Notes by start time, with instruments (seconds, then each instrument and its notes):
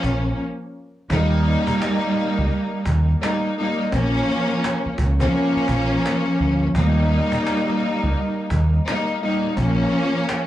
Already playing: string section F3 A#3 C#4
0.03 fingered electric bass A#1, cajon bass
0.27 cajon slap
1.10 fingered electric bass D#2, string section G3 A#3 D#4, cajon bass
1.46 cajon slap
1.67 cajon bass
1.82 cajon slap
2.15 cajon slap
2.38 fingered electric bass C#2
2.51 cajon slap
2.85 fingered electric bass D#2, cajon bass
3.09 cajon slap
3.22 string section G3 A#3 D#4, cajon slap
3.58 string section G3 A#3 D#4, cajon slap
3.92 fingered electric bass A#1, string section F3 A#3 C#4, cajon bass
4.28 cajon slap
4.50 cajon slap
4.64 cajon slap
4.85 muted fingered electric bass stroke
4.98 fingered electric bass C#2, cajon bass
5.20 string section F3 A#3 C#4, cajon bass
5.33 cajon slap
5.56 muted fingered electric bass stroke
5.68 fingered electric bass A#1, cajon bass
5.92 cajon slap
6.06 cajon slap
6.40 fingered electric bass D2, cajon slap
6.75 fingered electric bass D#2, string section G3 A#3 D#4, cajon bass
7.11 cajon slap
7.32 cajon bass
7.47 cajon slap
7.80 cajon slap
8.03 fingered electric bass C#2
8.16 cajon slap
8.50 fingered electric bass D#2, cajon bass
8.74 cajon slap
8.87 string section G3 A#3 D#4, cajon slap
9.22 string section G3 A#3 D#4, cajon slap
9.57 fingered electric bass A#1, string section F3 A#3 C#4, cajon bass
9.93 cajon slap
10.29 cajon slap